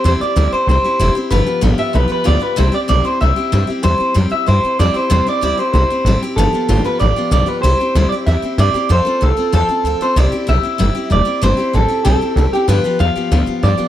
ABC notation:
X:1
M:4/4
L:1/8
Q:1/4=190
K:C
V:1 name="Clean electric guitar"
c d2 c c3 z | B2 z e B B d B | c d d c e3 z | c2 z e c2 d c |
c d d c c3 z | A3 B d2 d B | c3 d e2 d2 | c2 A2 A3 c |
d2 e4 d2 | c2 A2 A3 G | B2 f4 d2 |]
V:2 name="Steel-string acoustic guitar"
[C,G,CEG] [CEG] [C,G,CEG] [CEG] [G,CEG] [CEG] [C,G,CEG] [CEG] | [G,,D,F,B,FG] [F,B,FG] [G,,D,F,B,FG] [F,B,FG] [F,B,FG] [F,B,FG] [G,,D,F,B,FG] [F,B,FG] | [C,G,CEG] [CEG] [C,G,CEG] [CEG] [G,CEG] [CEG] [C,G,CEG] [CEG] | [C,G,CEG] [CEG] [C,G,CEG] [CEG] [G,CEG] [CEG] [C,G,CEG] [CEG] |
[C,G,CEG] [CEG] [C,G,CEG] [CEG] [G,CEG] [CEG] [C,G,CEG] [CEG] | [G,,D,F,B,FG] [F,B,FG] [G,,D,F,B,FG] [F,B,FG] [F,B,FG] [F,B,FG] [G,,D,F,B,FG] [F,B,FG] | [C,G,CEG] [CEG] [C,G,CEG] [CEG] [G,CEG] [CEG] [C,G,CEG] [CEG] | [F,CFA] [CFA] [F,CFA] [CFA] [F,CFA] [CFA] [F,CFA] [CFA] |
[C,G,CEG] [CEG] [G,CEG] [CEG] [C,G,CEG] [CEG] [G,CEG] [CEG] | [C,G,CEG] [CEG] [G,CEG] [CEG] [C,G,CEG] [CEG] [G,CEG] [CEG] | [G,,D,F,B,FG] [F,B,FG] [F,B,FG] [F,B,FG] [G,,D,F,B,FG] [F,B,FG] [F,B,FG] [F,B,FG] |]
V:3 name="Upright bass" clef=bass
E,, z D,, z C,, z F,,, z | G,,, z A,,, z B,,, z D,, z | C,, z B,,, z C,, z G,, z | E,, z ^F,, z G,, z =F,, z |
E,, z D,, z C,, z A,,, z | G,,, z _A,,, z =A,,, z B,,, z | C,, z D,, z E,, z G,, z | F,, z C,, z E,, z D,, z |
C,, z B,,, z G,,, z E,,, z | G,,, z A,,, z B,,, z C,, z | G,, z E,, z D,, z G,, z |]